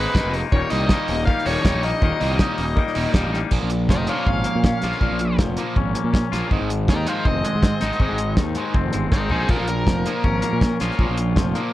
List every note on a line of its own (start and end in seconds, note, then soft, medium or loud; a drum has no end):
0.00 0.14 G#2 medium
0.00 0.13 D#3 loud
0.00 0.14 D#3 medium
0.00 0.14 G#3 medium
0.00 0.15 G#3 medium
0.00 0.15 A#3 medium
0.00 0.16 A#3 medium
0.00 0.15 D#4 medium
0.00 0.17 D#4 medium
0.00 0.32 B4 medium
0.14 0.24 G#1 medium
0.14 0.51 D#3 medium
0.14 0.40 D#3 medium
0.14 0.36 G#3 medium
0.14 0.40 G#3 medium
0.14 0.40 A#3 medium
0.14 0.35 A#3 medium
0.14 0.40 D#4 medium
0.14 0.33 D#4 medium
0.14 kick loud
0.14 snare loud
0.24 0.42 F1 medium
0.34 0.53 G#3 medium
0.34 0.54 A#3 medium
0.34 0.56 D#4 medium
0.34 open hi-hat medium
0.52 0.61 D#1 medium
0.52 1.27 D#2 medium
0.52 1.09 A#2 medium
0.52 0.89 D#3 medium
0.52 0.91 G3 medium
0.52 0.92 A#3 medium
0.52 0.93 D#4 loud
0.52 0.70 C#5 medium
0.52 kick loud
0.70 0.89 C2 medium
0.70 0.89 D#3 medium
0.70 0.89 G3 medium
0.70 0.90 A#3 medium
0.70 0.90 D#4 loud
0.70 1.23 D#5 medium
0.70 open hi-hat medium
0.89 1.27 D#3 medium
0.89 1.15 D#3 medium
0.89 1.15 G3 medium
0.89 1.28 G3 medium
0.89 1.15 A#3 medium
0.89 1.29 A#3 medium
0.89 1.15 D#4 medium
0.89 kick loud
0.89 snare loud
0.93 1.29 D#4 medium
1.08 1.26 D#1 medium
1.08 open hi-hat medium
1.26 1.65 D#2 loud
1.26 1.65 A#2 medium
1.26 1.47 D#3 loud
1.26 1.47 G3 loud
1.26 1.46 F5 medium
1.26 kick loud
1.30 1.46 A#3 loud
1.30 1.44 D#4 loud
1.38 snare soft
1.45 1.55 D#1 medium
1.45 1.63 D#3 medium
1.45 1.62 D#3 medium
1.45 1.64 G3 medium
1.45 1.63 G3 medium
1.45 1.64 A#3 medium
1.45 1.65 A#3 medium
1.45 1.66 D#4 medium
1.45 1.64 D#4 loud
1.45 1.85 C#5 medium
1.45 open hi-hat medium
1.63 1.74 D#1 medium
1.63 1.84 D#3 medium
1.63 1.89 D#3 medium
1.63 1.84 G3 medium
1.63 1.89 G3 medium
1.63 1.90 A#3 medium
1.63 1.84 A#3 medium
1.63 1.90 D#4 medium
1.63 1.81 D#4 medium
1.63 kick loud
1.63 snare loud
1.74 1.92 A#1 medium
1.82 2.01 D#3 medium
1.82 2.02 G3 medium
1.82 2.02 A#3 medium
1.82 2.03 D#4 medium
1.82 3.11 D#5 medium
1.82 open hi-hat medium
2.01 2.11 D#1 loud
2.01 2.58 D#2 medium
2.01 2.58 A#2 medium
2.01 2.38 D#3 loud
2.01 2.39 G3 medium
2.01 2.40 A#3 medium
2.01 2.41 D#4 loud
2.01 kick loud
2.20 2.39 C2 medium
2.20 2.37 D#3 medium
2.20 2.38 G3 medium
2.20 2.39 A#3 medium
2.20 2.39 D#4 medium
2.20 open hi-hat medium
2.39 2.64 D#3 medium
2.39 2.76 D#3 medium
2.39 2.64 G3 medium
2.39 2.76 G3 medium
2.39 2.64 A#3 medium
2.39 2.77 A#3 medium
2.39 2.64 D#4 medium
2.39 2.77 D#4 medium
2.39 kick loud
2.39 snare loud
2.58 2.76 D#1 medium
2.58 open hi-hat medium
2.76 3.14 D#2 medium
2.76 3.14 A#2 loud
2.76 2.97 D#3 loud
2.76 2.97 G3 loud
2.76 2.96 A#3 loud
2.76 2.94 D#4 loud
2.76 kick loud
2.87 snare soft
2.95 3.05 D#1 medium
2.95 3.12 D#3 medium
2.95 3.13 D#3 medium
2.95 3.13 G3 medium
2.95 3.14 G3 medium
2.95 3.13 A#3 loud
2.95 3.15 A#3 medium
2.95 3.13 D#4 medium
2.95 3.16 D#4 medium
2.95 open hi-hat medium
3.13 3.23 D#1 medium
3.13 3.38 D#3 medium
3.13 3.35 D#3 medium
3.13 3.39 G3 medium
3.13 3.34 G3 medium
3.13 3.39 A#3 medium
3.13 3.33 A#3 medium
3.13 3.39 D#4 medium
3.13 3.32 D#4 medium
3.13 kick loud
3.13 snare loud
3.25 3.42 A1 medium
3.33 3.52 D#3 medium
3.33 3.52 G3 medium
3.33 3.51 A#3 medium
3.33 3.51 D#4 medium
3.33 snare medium
3.51 3.61 A#1 medium
3.51 3.69 A#2 medium
3.51 4.45 A#2 medium
3.51 3.69 F3 medium
3.51 3.70 A#3 medium
3.51 kick medium
3.51 crash medium
3.63 3.88 A#1 medium
3.70 3.87 A#2 medium
3.70 3.88 F3 medium
3.70 closed hi-hat medium
3.89 4.07 F1 medium
3.89 4.06 A#2 medium
3.89 4.83 F3 medium
3.89 4.07 F3 medium
3.89 4.09 A#4 medium
3.89 4.08 D#5 medium
3.89 kick loud
3.89 snare loud
4.07 4.25 A#2 medium
4.07 4.26 F3 medium
4.07 4.26 A#3 medium
4.07 4.44 A#3 medium
4.07 4.26 C#5 medium
4.07 4.27 F5 medium
4.07 closed hi-hat medium
4.26 4.44 G#1 medium
4.26 4.44 A#2 medium
4.26 4.44 F3 medium
4.26 4.64 C#4 medium
4.26 5.37 F5 medium
4.26 kick loud
4.44 4.62 A#2 medium
4.44 4.62 F3 medium
4.44 5.39 A#3 medium
4.44 closed hi-hat medium
4.55 4.73 A#2 medium
4.64 4.81 A#2 medium
4.64 4.81 F3 medium
4.64 5.58 C#4 medium
4.64 kick loud
4.64 snare loud
4.82 4.92 A#1 medium
4.82 5.00 A#2 medium
4.82 5.01 F3 medium
4.82 5.01 A#3 medium
4.82 5.77 F4 medium
4.82 snare medium
4.82 closed hi-hat medium
4.92 snare soft
5.01 5.10 A#1 medium
5.01 5.19 A#2 medium
5.01 5.95 A#2 medium
5.01 5.19 F3 medium
5.01 5.19 A#3 medium
5.01 kick loud
5.11 5.37 A#1 medium
5.19 5.37 A#2 medium
5.19 5.37 F3 medium
5.19 closed hi-hat medium
5.39 5.56 F1 medium
5.39 5.56 A#2 medium
5.39 5.56 F3 medium
5.39 6.33 F3 medium
5.39 kick loud
5.39 snare loud
5.57 5.75 A#2 medium
5.57 5.75 F3 medium
5.57 5.93 A#3 soft
5.57 5.76 A#3 medium
5.57 closed hi-hat medium
5.76 5.94 G#1 medium
5.76 5.93 A#2 medium
5.76 5.93 F3 medium
5.76 6.12 C#4 medium
5.76 kick loud
5.95 6.12 A#2 medium
5.95 6.12 F3 medium
5.95 6.51 A#3 medium
5.95 closed hi-hat medium
6.04 6.22 A#2 medium
6.13 6.31 A#2 medium
6.13 6.31 F3 medium
6.13 6.51 C#4 medium
6.13 kick loud
6.13 snare loud
6.32 6.41 A#1 medium
6.32 6.50 A#2 medium
6.32 6.50 F3 medium
6.32 6.50 A#3 medium
6.32 6.51 F4 medium
6.32 snare medium
6.32 closed hi-hat medium
6.51 6.60 G#1 medium
6.51 6.69 G#2 medium
6.51 7.45 G#2 medium
6.51 6.69 D#3 medium
6.51 6.69 G#3 medium
6.51 kick loud
6.60 6.87 G#1 medium
6.70 6.87 G#2 medium
6.70 6.87 D#3 medium
6.70 closed hi-hat medium
6.88 7.06 D#2 medium
6.88 7.05 G#2 medium
6.88 7.05 D#3 medium
6.88 7.82 D#3 medium
6.88 7.07 A#4 medium
6.88 7.08 D#5 medium
6.88 kick loud
6.88 snare loud
7.06 7.24 G#2 medium
7.06 7.24 D#3 medium
7.06 7.25 G#3 medium
7.06 7.44 G#3 medium
7.06 7.26 C5 medium
7.06 7.25 F5 medium
7.06 closed hi-hat medium
7.25 7.43 F1 medium
7.25 7.43 G#2 medium
7.25 7.43 D#3 medium
7.25 7.61 C4 medium
7.25 8.35 D#5 medium
7.25 kick loud
7.44 7.61 G#2 medium
7.44 7.61 D#3 medium
7.44 8.56 G#3 medium
7.44 closed hi-hat medium
7.55 7.72 G#2 medium
7.62 7.80 G#2 medium
7.62 7.80 D#3 medium
7.62 8.56 C4 medium
7.62 kick loud
7.62 snare loud
7.81 7.91 G#1 medium
7.81 7.99 G#2 medium
7.81 7.99 D#3 medium
7.81 7.99 G#3 medium
7.81 8.75 D#4 medium
7.81 snare medium
7.81 closed hi-hat medium
7.92 snare soft
8.00 8.09 G#1 medium
8.00 8.93 G#2 medium
8.00 8.18 G#2 medium
8.00 8.18 D#3 medium
8.00 8.18 G#3 medium
8.00 kick loud
8.11 8.36 G#1 medium
8.18 8.36 G#2 medium
8.18 8.36 D#3 medium
8.18 closed hi-hat medium
8.37 8.55 D#2 medium
8.37 8.54 G#2 medium
8.37 9.31 D#3 medium
8.37 8.55 D#3 medium
8.37 kick loud
8.37 snare loud
8.55 8.74 G#2 medium
8.55 8.74 D#3 medium
8.55 8.93 G#3 medium
8.55 8.74 G#3 medium
8.55 closed hi-hat medium
8.74 8.92 F1 medium
8.74 8.92 G#2 medium
8.74 8.92 D#3 medium
8.74 9.11 C4 medium
8.74 kick loud
8.93 9.11 G1 medium
8.93 9.10 G#2 medium
8.93 9.10 D#3 medium
8.93 9.53 G#3 medium
8.93 closed hi-hat medium
9.12 9.29 G#1 medium
9.12 9.29 G#2 medium
9.12 9.29 D#3 medium
9.12 9.50 C4 medium
9.12 9.31 A#4 medium
9.12 9.32 D#5 medium
9.12 kick loud
9.12 snare medium
9.30 9.48 A#1 medium
9.30 9.49 G#2 medium
9.30 9.49 D#3 medium
9.30 9.49 G#3 medium
9.30 9.49 D#4 medium
9.30 9.50 G#4 medium
9.30 9.50 C5 medium
9.30 floor tom medium
9.48 9.58 A#1 medium
9.48 10.43 A#2 medium
9.48 9.67 A#2 medium
9.48 9.67 F3 medium
9.48 9.68 A#3 medium
9.48 9.67 F4 medium
9.48 9.68 A#4 medium
9.48 kick loud
9.48 crash medium
9.60 9.86 A#1 medium
9.68 9.85 A#2 medium
9.68 9.86 F3 medium
9.68 10.77 A#4 medium
9.68 closed hi-hat medium
9.87 10.04 F1 medium
9.87 10.04 A#2 medium
9.87 10.80 F3 medium
9.87 10.04 F3 medium
9.87 kick loud
9.87 snare loud
10.06 10.23 A#2 medium
10.06 10.23 F3 medium
10.06 10.41 A#3 medium
10.06 10.24 A#3 medium
10.06 closed hi-hat medium
10.24 10.42 G#1 medium
10.24 10.41 A#2 medium
10.24 10.41 F3 medium
10.24 10.60 C#4 medium
10.24 kick medium
10.42 10.60 A#2 medium
10.42 10.60 F3 medium
10.42 11.36 A#3 medium
10.42 closed hi-hat loud
10.53 10.70 A#2 medium
10.61 10.79 A#2 medium
10.61 10.79 F3 medium
10.61 11.55 C#4 medium
10.61 kick loud
10.61 snare loud
10.80 10.89 A#1 medium
10.80 10.98 A#2 medium
10.80 10.98 F3 medium
10.80 10.98 A#3 medium
10.80 11.73 F4 medium
10.80 snare medium
10.80 closed hi-hat medium
10.91 snare soft
10.99 11.07 A#1 medium
10.99 11.17 A#2 medium
10.99 11.73 A#2 medium
10.99 11.17 F3 medium
10.99 11.17 A#3 medium
10.99 kick loud
11.09 11.35 A#1 medium
11.17 11.35 A#2 medium
11.17 11.35 F3 medium
11.17 closed hi-hat medium
11.36 11.54 F1 medium
11.36 11.53 A#2 medium
11.36 11.73 F3 medium
11.36 11.53 F3 medium
11.36 kick loud
11.36 snare loud
11.55 11.73 A#2 medium
11.55 11.73 F3 medium
11.55 11.73 A#3 medium
11.55 closed hi-hat medium